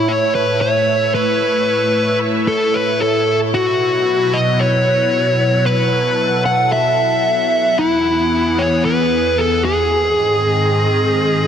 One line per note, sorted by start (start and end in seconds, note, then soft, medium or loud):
0.00 3.50 A2 medium
0.00 3.50 A3 medium
0.00 0.11 E4 loud
0.00 7.75 E4 medium
0.00 3.50 C#5 medium
0.00 3.50 E5 medium
0.08 0.33 C#5 loud
0.35 0.61 B4 loud
0.61 1.14 C#5 loud
1.15 2.17 B4 loud
2.48 2.75 A4 medium
2.74 3.02 B4 medium
3.01 3.38 A4 medium
3.54 7.75 B2 medium
3.54 7.75 F#3 medium
3.54 4.36 F#4 loud
3.54 5.64 B4 medium
3.54 9.87 F#5 medium
4.34 4.61 D#5 loud
4.60 5.66 C#5 loud
5.66 7.77 A4 medium
5.66 6.42 B4 loud
6.46 6.72 F#5 loud
6.72 7.82 E5 loud
7.78 9.89 E2 medium
7.78 9.89 E3 medium
7.78 9.89 B3 medium
7.78 8.61 E4 loud
7.78 11.47 G#4 medium
8.59 8.85 C#5 loud
8.85 9.40 B4 loud
9.38 9.64 A4 loud
9.65 11.46 G#4 medium
9.91 11.47 G#2 medium
9.91 11.47 D#3 medium
9.91 11.47 C4 medium
9.91 11.47 D#5 loud